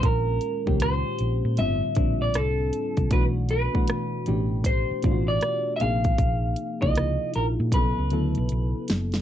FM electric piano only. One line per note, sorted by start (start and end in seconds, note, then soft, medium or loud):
0.00 0.57 A#2 medium
0.00 0.57 D#3 medium
0.00 0.57 G#3 medium
0.00 0.58 C#4 medium
0.00 0.58 F4 medium
0.66 1.57 A#2 medium
0.66 1.58 D#3 medium
0.66 1.58 G#3 medium
0.66 1.58 C#4 medium
0.66 1.58 G4 medium
1.57 1.93 A2 medium
1.57 1.94 D3 medium
1.57 1.94 G3 medium
1.57 1.94 C4 medium
1.57 1.94 F4 medium
1.96 3.05 A2 medium
1.96 3.05 D3 medium
1.96 3.05 G3 medium
1.96 3.05 C4 medium
1.96 3.06 D4 medium
3.11 3.68 B2 medium
3.11 3.68 E3 medium
3.11 3.69 A3 medium
3.11 3.69 D4 medium
3.11 3.69 F#4 medium
3.73 4.25 B2 medium
3.73 4.25 E3 medium
3.73 4.26 A3 medium
3.73 4.26 D4 medium
3.73 4.27 F#4 medium
4.26 4.99 B2 medium
4.26 4.99 E3 medium
4.26 4.99 A3 medium
4.26 5.00 D4 medium
4.26 5.00 G4 medium
5.03 5.80 B2 medium
5.03 5.80 E3 medium
5.03 5.80 A3 medium
5.03 5.81 D4 medium
5.03 5.12 F4 medium
5.11 5.84 F#4 medium
5.80 6.72 C3 medium
5.80 6.72 F3 medium
5.80 6.73 A#3 medium
5.80 6.73 D#4 medium
5.80 6.73 G#4 medium
6.81 7.72 C3 medium
6.81 7.73 F3 medium
6.81 7.73 A#3 medium
6.81 7.73 D#4 medium
6.81 6.87 E4 medium
6.89 7.77 F4 medium
7.73 8.09 C#3 medium
7.73 8.09 F#3 medium
7.73 8.10 B3 medium
7.73 8.10 E4 medium
7.73 8.10 A4 medium
8.11 9.20 C#3 medium
8.11 9.20 F#3 medium
8.11 9.20 B3 medium
8.11 9.21 E4 medium
8.11 9.21 A4 medium